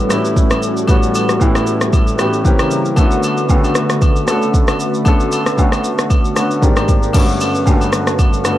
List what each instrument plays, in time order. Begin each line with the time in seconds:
Already playing: grand piano A2 E3 G3 B3 C#4 F#4, analog synth pad G3 C#4 F#4 A4 B4
0.09 grand piano A2 E3 G3 B3 C#4 E4, cross-stick, high agogo, shaker
0.25 shaker
0.37 kick, shaker
0.51 cross-stick, high agogo, shaker
0.63 shaker
0.77 shaker
0.87 grand piano A2 E3 G3 B3 C#4 F#4, kick, high agogo, shaker
1.03 shaker
1.15 high agogo, shaker
1.29 cross-stick, shaker
1.39 grand piano A2 E3 G3 B3 C#4 E4, kick, low woodblock, shaker
1.55 cross-stick, high agogo, shaker
1.67 shaker
1.81 cross-stick, shaker
1.93 kick, high agogo, shaker
2.07 shaker
2.18 grand piano A2 E3 G3 B3 C#4 G4, cross-stick, high agogo, shaker
2.33 shaker
2.44 analog synth pad C#3 E4 A#4, grand piano E3 A#3 C4 C#4 G4, kick, shaker
2.59 cross-stick, high agogo, shaker
2.71 shaker
2.85 shaker
2.96 grand piano D3 A3 B3 C#4 E4, analog synth pad D3 A3 F#4 B4, kick, high agogo, shaker
3.05 grand piano F#4
3.11 shaker
3.23 high agogo, shaker
3.37 shaker
3.48 grand piano C#3 A3 B3 C#4 F#4, kick, low woodblock, shaker
3.54 grand piano D3
3.64 high agogo, shaker
3.75 cross-stick, shaker
3.90 cross-stick, shaker
4.02 kick, high agogo, shaker
4.16 shaker
4.27 grand piano D3 A3 B3 C#4 A4, cross-stick, high agogo, shaker
4.42 shaker
4.54 kick, shaker
4.68 cross-stick, high agogo, shaker
4.80 shaker
4.94 shaker
5.05 grand piano D3 A3 B3 C#4 A4, kick, high agogo, shaker
5.20 shaker
5.32 high agogo, shaker
5.46 cross-stick, shaker
5.57 grand piano D3 A3 B3 C#4 F#4, kick, low woodblock, shaker
5.72 cross-stick, high agogo, shaker
5.84 shaker
5.99 cross-stick, shaker
6.10 kick, high agogo, shaker
6.25 shaker
6.35 grand piano D3 A3 B3 C#4 F#4, cross-stick, high agogo, shaker
6.51 shaker
6.61 grand piano G#2 D#3 A#3 C4 D4 G4, analog synth pad G#3 D4 G4 A#4 C5, kick, shaker
6.76 cross-stick, high agogo, shaker
6.88 kick, shaker
7.03 shaker
7.13 grand piano G2 D3 A3 B3 C#4 F#4, analog synth pad G3 C#4 F#4 A4 B4, kick, crash, high agogo, shaker
7.29 shaker
7.41 high agogo, shaker
7.55 shaker
7.66 grand piano G2 D3 A3 A#3 C#4 F#4, kick, low woodblock, shaker
7.74 grand piano B3
7.81 high agogo, shaker
7.93 cross-stick, shaker
8.07 cross-stick, shaker
8.19 kick, high agogo, shaker
8.33 shaker
8.44 grand piano G2 D3 A3 B3 C#4 F#4, cross-stick, high agogo, shaker